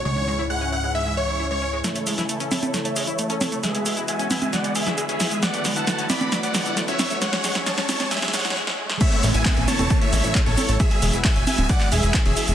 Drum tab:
CC |--------------------------------|--------------------------------|--------------------------------|--------------------------------|
HH |--------------------------------|x-x-o-x-x-x-o-x-x-x-o-x-x-x-o-x-|x-x-o-x-x-x-o-x-x-x-o-x-x-x-o-x-|x-x-o-x-x-x-o-x-x-x-o-x-x-x-o-x-|
SH |--------------------------------|x-x-x-x-x-x-x-x-x-x-x-x-x-x-x-x-|x-x-x-x-x-x-x-x-x-x-x-x-x-x-x-x-|x-x-x-x-x-x-x-x-x-x-x-x-x-x-x-x-|
CP |--------------------------------|--------------------------------|--------------------------------|--------------------------------|
SD |--------------------------------|o-----o-----o---o-----------o---|o-----------o---o-----o-----o---|o---o---o---o---o---o---o---o---|
CG |--------------------------------|------------o-o-------------o---|------------o-o-----------------|------------o-o-------------o---|
BD |--------------------------------|--------------------------------|--------------------------------|--------------------------------|

CC |--------------------------------|x-------------------------------|--------------------------------|
HH |x-x-o-x-x-x-o-x-x-x-o-x---------|x-x-o-x-x-x-o-x-x-x-o-x-x-x-o-x-|x-x-o-x-x-x-o-x-x-x-o-x-x-x-o-x-|
SH |x-x-x-x-x-x-x-x-x-x-x-x---------|x---x-x-x---x-x-x---x-x-x---x-x-|x---x-x-x---x-x-x---x-x-x---x-x-|
CP |--------------------------------|--------x---------------x-------|--------x---------x-----x-------|
SD |o-o-o-o-o-o-o-o-ooooooooo-o---o-|--------------------------------|--------------------------------|
CG |------------o-o-----------------|------------o-o-------------o---|------------o-o-----------------|
BD |--------------------------------|o-------o-------o-------o-------|o-------o-------o-------o-------|